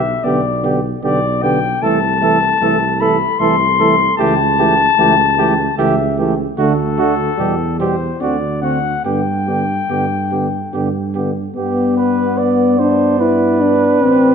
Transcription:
Already playing: tuba B1, cornet E5
0.23 tuba B1, trombone D3, french horn B3, trumpet G4, cornet D5
0.63 trombone D3, french horn B3, trumpet G4
1.03 tuba B1, trombone D3, french horn B3, trumpet G4, cornet D5
1.42 trombone D3, french horn B3, trumpet G4, cornet G5
1.82 tuba C2, trombone E3, french horn A3, trumpet A4, cornet A5
2.22 trombone E3, french horn A3, trumpet A4
2.61 tuba C2, trombone E3, french horn A3, trumpet A4
3.00 trombone E3, french horn A3, trumpet A4, cornet B5
3.39 tuba C2, trombone E3, french horn A3, trumpet A4, cornet C6
3.79 trombone E3, french horn A3, trumpet A4
4.18 tuba C#2, trombone E3, french horn A3, trumpet G4, cornet A5
4.59 trombone E3, french horn A3, trumpet G4
4.98 tuba C#2, trombone E3, french horn A3, trumpet G4
5.38 trombone E3, french horn A3, trumpet G4
5.78 tuba C#2, trombone E3, french horn A3, trumpet G4, cornet E5
6.18 trombone E3, french horn A3, trumpet G4
6.57 tuba D2, trombone D3, french horn A3, trumpet F#4, cornet A4
6.98 trombone D3, french horn A3, trumpet F#4
7.38 tuba E2, trombone B2, french horn G3, trumpet G4
7.79 trombone B2, french horn G3, trumpet G4, cornet C5
8.21 tuba D2, trombone D3, french horn C4, trumpet F#4, cornet D5
8.62 trombone D3, french horn C4, trumpet F#4, cornet F#5
9.05 tuba G2, trombone D3, french horn B3, trumpet G4, cornet G5
9.47 trombone D3, french horn B3, trumpet G4
9.89 tuba G2, trombone D3, french horn B3, trumpet G4
10.31 trombone D3, french horn B3, trumpet G4
10.73 tuba G2, trombone D3, french horn B3, trumpet G4
11.15 trombone D3, french horn B3, trumpet G4
11.56 tuba G2, french horn B3, trombone B3, trumpet G4, cornet D5
11.97 trumpet B4
12.38 trumpet D5
12.79 french horn D4, trumpet C5
13.20 french horn E4, trumpet B4
13.61 french horn D4
14.02 tuba A1, french horn C4, trombone C4

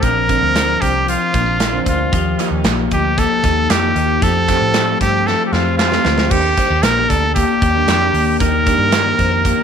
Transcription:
Already playing: clean electric guitar C4
0.01 picked electric bass A#1, steel-string acoustic guitar F3 C4 D4 A#4, clean electric guitar F3, trumpet A#4, kick, closed hi-hat
0.28 steel-string acoustic guitar A#2 D3 F3 C4 D4 A#4, clean electric guitar C4, kick, closed hi-hat
0.42 picked electric bass D2
0.55 clean electric guitar F3, snare, closed hi-hat
0.80 picked electric bass C2, steel-string acoustic guitar F3 C4 D4 A#4, clean electric guitar C4, trumpet G4, kick, closed hi-hat
1.07 steel-string acoustic guitar F3 C4 D4 A#4, clean electric guitar F3, trumpet F4, closed hi-hat
1.32 picked electric bass A#1, steel-string acoustic guitar F3 C4 D4 A#4, clean electric guitar A#3, kick, closed hi-hat
1.46 clean electric guitar C4
1.60 clean electric guitar F3, snare, closed hi-hat
1.72 steel-string acoustic guitar A#2 D3 F3 C4 D4 A#4
1.86 picked electric bass D2, clean electric guitar C4, trumpet F4, kick, closed hi-hat
2.12 picked electric bass D#2, steel-string acoustic guitar F3 A#3 F4 G4, clean electric guitar F3, kick, closed hi-hat
2.39 steel-string acoustic guitar D#3 F3 A#3 F4 G4, clean electric guitar D#4, clap, closed hi-hat
2.51 picked electric bass D#2
2.64 picked electric bass A#1, clean electric guitar A#3, snare, clap, closed hi-hat
2.91 picked electric bass D2, steel-string acoustic guitar F3 A#3 F4 G4, clean electric guitar D#4, trumpet G4, kick, closed hi-hat
3.17 steel-string acoustic guitar F3 A#3 F4 G4, clean electric guitar A#3, trumpet A4, kick, closed hi-hat
3.43 picked electric bass D#2, steel-string acoustic guitar F3 A#3 F4 G4, clean electric guitar D#4, kick, closed hi-hat
3.70 picked electric bass F2, clean electric guitar A#3, trumpet G4, snare, clap, closed hi-hat
3.83 steel-string acoustic guitar D#3 F3 A#3 F4 G4
3.96 picked electric bass D#2, clean electric guitar D#4, closed hi-hat
4.21 picked electric bass F2, clean electric guitar F3, steel-string acoustic guitar A3 C4 F4 G4, trumpet A4, kick, closed hi-hat
4.48 steel-string acoustic guitar F3 A3 C4 F4 G4, clean electric guitar C4, kick, clap, closed hi-hat
4.61 picked electric bass A2
4.74 clean electric guitar A3, snare, clap, closed hi-hat
4.99 picked electric bass G2, steel-string acoustic guitar A3 C4 F4 G4, clean electric guitar C4, trumpet G4, kick, closed hi-hat
5.26 steel-string acoustic guitar A3 C4 F4 G4, clean electric guitar A3, trumpet A4, snare
5.46 trumpet G4
5.52 picked electric bass F2, steel-string acoustic guitar A3 C4 F4 G4, clean electric guitar C4, trumpet F4, snare
5.78 clean electric guitar A3, trumpet F4, snare, clap
5.91 steel-string acoustic guitar F3 A3 C4 F4 G4, snare
6.05 picked electric bass D2, clean electric guitar C4, snare
6.18 snare
6.31 picked electric bass D#2, steel-string acoustic guitar D#3 G3 A#3 D4 G4, trumpet G4, kick, crash
6.57 steel-string acoustic guitar D#3 G3 A#3 D4 G4, clean electric guitar C4, kick, closed hi-hat
6.70 picked electric bass D#2, clean electric guitar D4
6.83 picked electric bass A#1, clean electric guitar A#3, trumpet A#4, snare, clap, closed hi-hat
6.97 steel-string acoustic guitar A#3 D4 G4
7.10 picked electric bass D2, clean electric guitar D4, trumpet A4, kick, closed hi-hat
7.35 steel-string acoustic guitar G3 A#3 D4, clean electric guitar A#3, trumpet G4, kick, closed hi-hat
7.39 steel-string acoustic guitar G4
7.62 picked electric bass D#2, clean electric guitar G4, kick, closed hi-hat
7.75 steel-string acoustic guitar D#3 G3 A#3 D4 G4
7.87 picked electric bass F2, clean electric guitar D4, snare, clap, closed hi-hat
8.01 steel-string acoustic guitar A#3 D4 G4
8.13 picked electric bass D#2, clean electric guitar A#3, open hi-hat
8.40 picked electric bass D#2, steel-string acoustic guitar D#3 G3 A#3 D4 G4, clean electric guitar D#3, trumpet A#4, kick, closed hi-hat
8.66 steel-string acoustic guitar D#3 G3 A#3 D4 G4, clean electric guitar D4, kick, closed hi-hat
8.78 picked electric bass G2
8.92 clean electric guitar A#3, snare, clap, closed hi-hat
9.05 steel-string acoustic guitar A#3 D4 G4
9.18 picked electric bass F2, clean electric guitar C4, kick, closed hi-hat
9.31 clean electric guitar D4
9.44 steel-string acoustic guitar G3 A#3 D4 G4, clean electric guitar A#3, kick, closed hi-hat

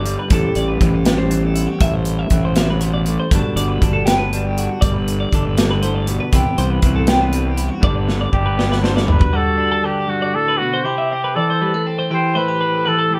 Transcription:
Already playing: fingered electric bass G1, clean electric guitar D3 D4 D5
0.06 clean electric guitar G2, closed hi-hat
0.19 clean electric guitar B4
0.30 fingered electric bass A1, clean electric guitar A2 E3 G3 C4 G4 A4, kick, closed hi-hat
0.55 fingered electric bass A1, clean electric guitar D5, closed hi-hat
0.68 clean electric guitar B4
0.81 fingered electric bass A1, clean electric guitar E3 C4, kick, closed hi-hat
0.94 clean electric guitar A4
1.05 clean electric guitar G3 G4, snare, closed hi-hat
1.18 clean electric guitar C5
1.30 clean electric guitar E2 C4, closed hi-hat
1.43 clean electric guitar A4
1.55 clean electric guitar E4, closed hi-hat
1.67 clean electric guitar F#4 G4
1.81 fingered electric bass A1, clean electric guitar A2 E5, kick, closed hi-hat
1.94 clean electric guitar C5
2.05 closed hi-hat
2.19 clean electric guitar E5
2.30 fingered electric bass A1, clean electric guitar E3 C4, kick, closed hi-hat
2.45 clean electric guitar C5
2.56 clean electric guitar C3 E5, snare, closed hi-hat
2.70 clean electric guitar B4
2.81 clean electric guitar B2 C5, closed hi-hat
2.94 clean electric guitar D5
3.06 clean electric guitar A2, closed hi-hat
3.20 clean electric guitar C5
3.31 fingered electric bass G1, clean electric guitar G2 D3 B3 D4 A4, kick, closed hi-hat
3.35 clean electric guitar F#4
3.56 fingered electric bass G1, clean electric guitar D5, closed hi-hat
3.68 clean electric guitar B4
3.82 fingered electric bass G1, clean electric guitar D3 D4, kick, closed hi-hat
3.93 clean electric guitar A4
4.06 clean electric guitar B3 G4, snare, closed hi-hat
4.18 clean electric guitar B4
4.33 clean electric guitar G2 D4, closed hi-hat
4.44 clean electric guitar G4
4.58 clean electric guitar F#4, closed hi-hat
4.70 clean electric guitar F#4
4.81 fingered electric bass G1, clean electric guitar G2 D5, kick, closed hi-hat
4.94 clean electric guitar B4
5.08 closed hi-hat
5.20 clean electric guitar D5
5.33 fingered electric bass G1, clean electric guitar D3 D4, kick, closed hi-hat
5.45 clean electric guitar B4
5.58 clean electric guitar G2 D5, snare, closed hi-hat
5.71 clean electric guitar B4
5.83 clean electric guitar A2 C5, closed hi-hat
5.95 clean electric guitar D5
6.07 clean electric guitar B2, closed hi-hat
6.20 clean electric guitar B4
6.33 fingered electric bass C2, clean electric guitar C3 E3 B3 C4 E4 G4, kick, closed hi-hat
6.58 fingered electric bass C2, clean electric guitar C5, closed hi-hat
6.70 clean electric guitar B4
6.82 fingered electric bass C2, clean electric guitar E3 C4, kick, closed hi-hat
6.96 clean electric guitar A4
7.07 clean electric guitar B3 G4, snare, closed hi-hat
7.21 clean electric guitar B4
7.33 clean electric guitar G2 C4, closed hi-hat
7.47 clean electric guitar G4
7.57 clean electric guitar E4, closed hi-hat
7.68 clean electric guitar F#4
7.80 fingered electric bass G1, clean electric guitar G2 D3 B3 D4 D5, kick, high tom
7.96 clean electric guitar B4
8.09 snare
8.21 clean electric guitar D5
8.32 fingered electric bass G1, clean electric guitar D3 D4, trumpet G4, kick
8.46 clean electric guitar B4
8.57 clean electric guitar B3 D5, snare
8.72 clean electric guitar B4, snare
8.82 clean electric guitar G2 D4 C5, snare
8.96 clean electric guitar D5, snare
9.07 clean electric guitar E4, floor tom
9.11 trumpet B4
9.19 clean electric guitar F#4 B4, kick
9.33 clean electric guitar G2 F#4 D5, trumpet A4
9.57 clean electric guitar D4 B4
9.72 clean electric guitar A4
9.83 clean electric guitar D3 B4, trumpet G4
9.98 clean electric guitar A4
10.07 clean electric guitar G2, trumpet F#4
10.22 clean electric guitar D5
10.34 clean electric guitar A2, trumpet A4
10.48 clean electric guitar B4
10.58 trumpet F#4
10.62 clean electric guitar B2
10.73 clean electric guitar C5
10.84 clean electric guitar C3 E4, trumpet G4
10.98 clean electric guitar E5
11.11 clean electric guitar C4 C5
11.24 clean electric guitar B4
11.35 clean electric guitar E3 D5, trumpet A4
11.50 clean electric guitar C5
11.62 clean electric guitar G3 B4
11.74 clean electric guitar A3
11.86 clean electric guitar C4 A4
11.99 clean electric guitar C5
12.11 clean electric guitar E3 G4, trumpet C5
12.35 clean electric guitar A2 E4 C5, trumpet B4
12.48 clean electric guitar G4
12.61 clean electric guitar C4 B4
12.74 clean electric guitar A4
12.85 clean electric guitar E3 B4, trumpet A4
12.98 clean electric guitar A4
13.11 clean electric guitar A2, trumpet G4

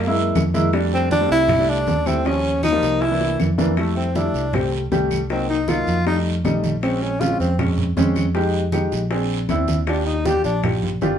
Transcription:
Already playing: fingered electric bass F#2, tenor saxophone A#3
0.07 upright piano G#3 A#3 E4
0.16 high conga
0.35 fingered electric bass F2, high bongo, low bongo, high conga, short guiro, claves
0.54 upright piano G#3 A#3 E4, high bongo, high conga, short guiro
0.73 upright piano G3 A3 D4, high bongo, high conga, long guiro, claves
0.92 tenor saxophone C4, high bongo, high conga
1.11 tenor saxophone D4, high bongo, high conga, short guiro
1.21 upright piano G3 A3 C4
1.30 fingered electric bass C2, tenor saxophone E4, high bongo, high conga, short guiro
1.49 high bongo, high conga, low conga, long guiro, claves
1.58 upright piano G3 A3 D4
1.68 tenor saxophone D4, high conga
1.87 fingered electric bass D#2, high bongo, low bongo, high conga, short guiro
2.06 upright piano G3 A3 E4, tenor saxophone C4, high bongo, high conga, short guiro, claves
2.25 upright piano F3 G3 C#4, tenor saxophone C#4, high bongo, high conga, long guiro
2.44 high bongo, high conga
2.63 tenor saxophone D#4, high bongo, high conga, short guiro, claves
2.72 upright piano F3 G3 A#3
2.82 fingered electric bass C2, high bongo, short guiro
3.01 tenor saxophone E4, high bongo, high conga, long guiro
3.11 upright piano E3 A#3 D4
3.20 high bongo, high conga
3.39 fingered electric bass F2, low bongo, high conga, short guiro, claves
3.58 upright piano E3 A#3 D4, low bongo, high conga, short guiro
3.77 upright piano G3 A3 E4, tenor saxophone A3, high bongo, high conga, long guiro, claves
3.96 tenor saxophone C4, high bongo, high conga
4.15 upright piano G3 A3 E4, tenor saxophone D4, high bongo, high conga, short guiro
4.34 fingered electric bass C2, high bongo, high conga, short guiro
4.53 upright piano G3 A3 G4, tenor saxophone C4, high bongo, high conga, low conga, long guiro, claves
4.72 high conga
4.91 fingered electric bass C2, upright piano G3 A3 G4, high bongo, low bongo, high conga, short guiro
5.11 high bongo, high conga, short guiro, claves
5.30 upright piano F#3 A#3 D#4, tenor saxophone C4, high bongo, high conga, long guiro
5.49 tenor saxophone D#4, high bongo, high conga
5.68 upright piano F#3 A#3 D#4, tenor saxophone F4, high bongo, high conga, short guiro, claves
5.87 fingered electric bass F2, high bongo, high conga, short guiro
6.06 upright piano G3 A3 D#4, tenor saxophone D#4, high bongo, high conga, long guiro
6.25 high conga
6.44 fingered electric bass A#1, upright piano G3 A3 D#4, high bongo, low bongo, high conga, short guiro, claves
6.64 high bongo, high conga, short guiro
6.83 upright piano G#3 C4 C#4, tenor saxophone C4, high bongo, high conga, long guiro, claves
7.02 tenor saxophone C#4, high bongo, high conga
7.20 upright piano G#3 C4 C#4, tenor saxophone F4, high bongo, high conga, short guiro
7.39 fingered electric bass F2, tenor saxophone C4, high bongo, high conga, short guiro
7.59 upright piano G#3 C4 C#4, high bongo, high conga, low conga, long guiro, claves
7.78 high conga, low conga
7.97 fingered electric bass F2, upright piano G#3 C4 C#4, high bongo, low bongo, high conga, short guiro
8.16 high bongo, high conga, short guiro, claves
8.35 upright piano G#3 D#4 G4, high bongo, high conga, long guiro
8.53 high bongo, high conga
8.72 upright piano G#3 D#4 G4, high bongo, high conga, short guiro, claves
8.92 fingered electric bass A#1, high bongo, high conga, short guiro
9.11 upright piano C4 D4 G#4, high bongo, high conga, long guiro
9.30 high conga
9.49 fingered electric bass D#2, upright piano C4 D4 E4, high bongo, low bongo, high conga, short guiro, claves
9.68 high bongo, high conga, short guiro
9.87 upright piano D4 F4 G4, tenor saxophone D4, high bongo, high conga, long guiro, claves
10.06 tenor saxophone D#4, high bongo, high conga
10.25 upright piano D4 F4 G4, tenor saxophone G4, high bongo, high conga, short guiro
10.44 fingered electric bass A#1, tenor saxophone D4, high bongo, high conga, short guiro
10.63 upright piano D4 F4 G4, high bongo, high conga, low conga, long guiro, claves
10.83 high conga, low conga
11.01 fingered electric bass G1, upright piano D4 F4 G4, high bongo, low bongo, high conga, short guiro

